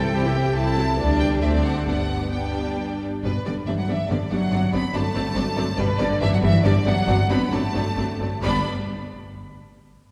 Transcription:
Already playing: cello section A4, violin section G5
0.03 viola section E3 E4, violin section G4 E5
0.14 double bass section C2, viola section G3 C4, violin section E4 C5, cello section G4
0.24 viola section E3 E4, violin section G4 E5
0.35 viola section G3 C4, violin section E4 C5
0.45 viola section E3 E4, violin section G4 E5
0.55 double bass section C2, viola section E3 C4, violin section E4 A4 A5, cello section E4
0.76 viola section F#3
0.98 double bass section D2, viola section G3 B3, cello section D4, violin section D4 D5
1.19 violin section G5
1.42 double bass section D2, viola section A3 C4, cello section C4, violin section D4 D5 E5
1.64 violin section F#5
1.87 double bass section G1, viola section G3 B3, cello section B3, violin section D4 D5 F#5
2.32 viola section G3 B3, violin section D4 D5 G5
3.23 double bass section G1, cello section B2, viola section G3 B3, violin section D4 B4 D5
3.45 double bass section G1, cello section D3, viola section G3 B3, violin section D4 D5
3.67 double bass section G1, cello section E3, viola section G3 B3, violin section D4 D5 E5
3.78 cello section F#3, violin section F#5
3.88 double bass section G1, cello section E3, viola section G3 B3, violin section D4 D5 E5
4.09 double bass section G1, cello section D3, viola section G3 B3, violin section D4 D5
4.30 double bass section G1, cello section F#3, viola section G3 B3, violin section D4 D5 F#5
4.52 double bass section G1, viola section F#3 C4, violin section D4 D5
4.72 double bass section G1, viola section F#3 C4, cello section B3, violin section D4 D5 B5
4.94 double bass section G1, viola section F#3 C4, cello section A3, violin section D4 D5 A5
5.14 double bass section G1, viola section F#3 C4, violin section D4 D5
5.35 double bass section G1, viola section F#3 C4, violin section D4 D5
5.56 double bass section G1, viola section F#3 C4, violin section D4 D5
5.77 double bass section G1, cello section B2, viola section G3 B3, violin section D4 B4 D5
5.99 double bass section G1, cello section D3, viola section G3 B3, violin section D4 D5
6.21 double bass section G1, cello section E3, viola section G3 B3, violin section D4 D5 E5
6.32 cello section F#3, violin section F#5
6.42 double bass section G1, cello section E3, viola section G3 B3, violin section D4 D5 E5
6.64 double bass section G1, cello section D3, viola section G3 B3, violin section D4 D5
6.85 double bass section G1, cello section F#3, viola section G3 B3, violin section D4 D5 F#5
7.07 double bass section G1, viola section F#3 C4, violin section D4 D5
7.30 double bass section G1, viola section F#3 C4, cello section B3, violin section D4 D5 B5
7.52 double bass section G1, viola section F#3 C4, cello section A3, violin section D4 D5 A5
7.74 double bass section G1, viola section F#3 C4, violin section D4 D5
7.97 double bass section G1, viola section F#3 C4, violin section D4 D5
8.20 double bass section G1, viola section F#3 C4, violin section D4 D5
8.43 double bass section G1, viola section G3 D4, cello section B3, violin section D4 D5 B5

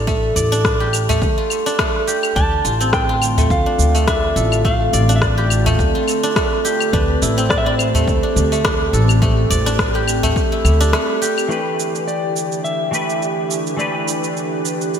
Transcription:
Already playing: upright bass A1, guzheng B3 D4 F4 A4
0.07 guzheng A3, kick, cabasa
0.36 upright bass A1, guzheng D5, udu, cabasa
0.52 guzheng D4, cabasa
0.65 kick, cross-stick, cabasa
0.80 guzheng G4
0.93 cabasa, claves
1.09 guzheng A3, udu, cabasa
1.22 upright bass D2, kick, cabasa
1.38 guzheng F4
1.50 cabasa, claves
1.66 guzheng D4, cabasa
1.79 guzheng A3, kick, cross-stick, cabasa
2.07 guzheng G4, cabasa
2.23 cabasa, claves
2.36 upright bass D2, analog synth pad D3, guzheng D4, electric slide guitar A5, kick, cabasa
2.60 analog synth pad A3 F4
2.65 upright bass A1, guzheng F4, cabasa
2.80 guzheng C4, cabasa
2.85 analog synth pad C4
2.93 electric slide guitar G5, kick, cross-stick, cabasa
3.09 guzheng F4
3.22 cabasa, claves
3.38 guzheng A3, udu, cabasa
3.50 upright bass D2, electric slide guitar F5, kick, cabasa
3.66 guzheng D4
3.79 upright bass D2, cabasa
3.95 guzheng A3, cabasa
4.08 guzheng D4, electric slide guitar E5, kick, cross-stick, cabasa
4.36 upright bass A1, guzheng A4, cabasa
4.52 cabasa, claves
4.65 guzheng A3, electric slide guitar F5, kick, cabasa
4.93 upright bass A1, guzheng D5, cabasa
5.09 guzheng D4, cabasa
5.16 electric slide guitar E5
5.22 electric slide guitar D5, kick, cross-stick, cabasa
5.38 guzheng G4
5.50 cabasa, claves
5.66 guzheng A3, udu, cabasa
5.79 upright bass D2, kick, cabasa
5.95 guzheng F4
6.08 cabasa, claves
6.23 guzheng D4, cabasa
6.36 guzheng A3, kick, cross-stick, cabasa
6.65 guzheng G4, cabasa
6.80 cabasa, claves
6.93 upright bass D2, guzheng D4, electric slide guitar B4, kick, cabasa
7.17 analog synth pad G4
7.22 upright bass A1, guzheng E4, cabasa
7.38 guzheng C4, cabasa
7.50 electric slide guitar D5, kick, cross-stick, cabasa
7.58 electric slide guitar E5
7.66 guzheng E4, electric slide guitar D5
7.78 electric slide guitar C5, cabasa, claves
7.94 guzheng A3, udu, cabasa
8.08 upright bass D2, kick, cabasa
8.23 guzheng D4
8.36 upright bass D2, cabasa
8.52 guzheng A3, cabasa
8.65 guzheng D4, kick, cross-stick, cabasa
8.93 upright bass A1, guzheng A4, cabasa
9.09 cabasa, claves
9.22 guzheng A3, kick, cabasa
9.50 upright bass A1, guzheng D5, udu, cabasa
9.66 guzheng D4, cross-stick, cabasa
9.79 kick, cross-stick, cabasa
9.95 guzheng G4
10.08 cabasa, claves
10.23 guzheng A3, udu, cabasa
10.36 kick, cabasa
10.52 guzheng E4
10.65 upright bass D2, cabasa, claves
10.80 guzheng D4, cabasa
10.93 guzheng A3, cross-stick, cabasa
11.22 guzheng G4, cabasa
11.38 cabasa, claves
11.48 analog synth pad D3, clean electric guitar E3 A3 D4 G4, electric slide guitar B4, singing bowl G5, cabasa
11.52 clean electric guitar B4
11.80 cabasa
11.95 cabasa
12.00 analog synth pad D4
12.08 electric slide guitar D5, cabasa
12.36 cabasa
12.52 cabasa
12.64 electric slide guitar E5, cabasa
12.91 clean electric guitar E3 A3 D4 G4 B4, cabasa
13.10 cabasa
13.18 analog synth pad B4
13.22 cabasa
13.51 cabasa
13.67 cabasa
13.77 clean electric guitar E3 A3 D4 G4, electric slide guitar D5, cabasa
13.81 clean electric guitar B4
14.08 cabasa
14.24 cabasa
14.37 cabasa
14.65 cabasa
14.81 cabasa
14.94 cabasa

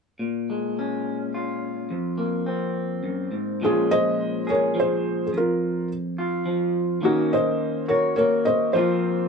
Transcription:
0.19 clean electric guitar A#2
0.50 clean electric guitar G#3
0.79 clean electric guitar C#4
1.34 clean electric guitar F4
1.91 clean electric guitar F2
2.18 clean electric guitar A#3
2.46 clean electric guitar C4
3.04 clean electric guitar F#2
3.32 clean electric guitar G#2
3.62 clean electric guitar A#2 F3 G#3 C#4, felt piano F4 G#4
3.91 felt piano C5 D#5
4.47 clean electric guitar G#4, felt piano A#4 C#5
4.75 clean electric guitar F3
4.80 felt piano G#4 C5
5.27 felt piano G#4
5.33 clean electric guitar F2
5.37 felt piano F4 A#4
6.18 clean electric guitar F4
6.46 clean electric guitar F3
7.01 clean electric guitar D#3 A#3 C#4, felt piano D#4 F#4
7.33 felt piano C5 D#5
7.88 clean electric guitar F#4, felt piano A#4 C#5
8.16 clean electric guitar A#3, felt piano A#4 C#5
8.45 felt piano C5 D#5
8.73 clean electric guitar F2 F3 A#3 C4 F4, felt piano F4 C5

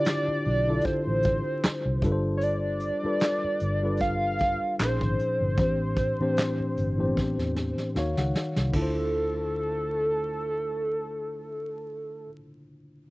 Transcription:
Already playing: tine electric piano D3 D4 E4 F4 G4 C5, analog synth lead D5
0.05 snare, clap, closed hi-hat
0.28 muted fingered electric bass stroke
0.45 fingered electric bass B1, open hi-hat
0.67 tine electric piano D3 D4 E4 F4 A4
0.81 analog synth lead C5, kick, closed hi-hat
0.86 muted fingered electric bass stroke
1.07 fingered electric bass A1
1.23 kick, closed hi-hat
1.64 muted fingered electric bass stroke, snare, clap, closed hi-hat
1.85 fingered electric bass C2
2.02 fingered electric bass G1, tine electric piano G3 D4 F4 A4, kick, closed hi-hat
2.06 tine electric piano B4
2.12 tine electric piano C5
2.37 analog synth lead C#5, closed hi-hat
2.43 analog synth lead D5
2.80 closed hi-hat
3.03 tine electric piano G3 D4 F4 A4 B4, muted fingered electric bass stroke
3.20 snare, clap, closed hi-hat
3.44 muted fingered electric bass stroke
3.60 fingered electric bass G1, closed hi-hat
3.82 tine electric piano G3 D4 F4 A4 B4
3.97 kick, closed hi-hat
4.01 analog synth lead F5
4.39 kick, closed hi-hat
4.79 fingered electric bass A#1, tine electric piano A#2 F3 C#4 D#4 G#4 A#4, analog synth lead C5, snare, clap, closed hi-hat
4.89 tine electric piano C5
5.01 fingered electric bass G#1, kick
5.19 closed hi-hat
5.41 fingered electric bass G1
5.57 fingered electric bass A1, tine electric piano A2 E3 C4 D4 G4, kick, closed hi-hat
5.62 tine electric piano C5
5.97 kick, closed hi-hat
6.20 tine electric piano A2 E3 C4 D4 G4 C5, muted fingered electric bass stroke
6.37 snare, clap, closed hi-hat
6.60 muted fingered electric bass stroke
6.77 fingered electric bass G1, closed hi-hat
6.98 tine electric piano A2 E3 B3 D4 G4 C5
7.05 tine electric piano C4
7.17 muted fingered electric bass stroke, kick, snare
7.38 fingered electric bass E2, snare
7.56 snare
7.78 snare
7.95 fingered electric bass D#2, tine electric piano D#3 D#4 F#4 C#5 F5, snare
8.17 fingered electric bass C#2, tine electric piano F#5, snare
8.35 snare
8.56 fingered electric bass C2, snare
8.70 tine electric piano D3 D4, kick, crash
8.74 fingered electric bass D2, tine electric piano E4, analog synth lead A4
8.79 tine electric piano F4 C5

